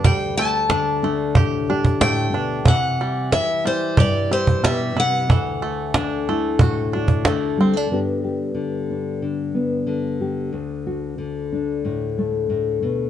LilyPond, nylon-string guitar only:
\new Staff \with { instrumentName = "Nylon-string guitar" } { \clef bass \time 4/4 \key g \major \tempo 4 = 92 << { r4. d'4 g'4. | r4. e'4 g'4. | r4. e'4 fis'4 g16 a16 | <d b d' g'>8 g'4 d'4 b4 g'8 |
r8 fis'4 d'4 a4. | } \\ { d,4 d4 a,4 a,8 b,8 | c4 e4 g,4 b,8 c8 | d,4 d4 a,4 d4 | g,4 d4 d4 d4 |
d,4 d4 a,4 a,8 b,8 | } >> }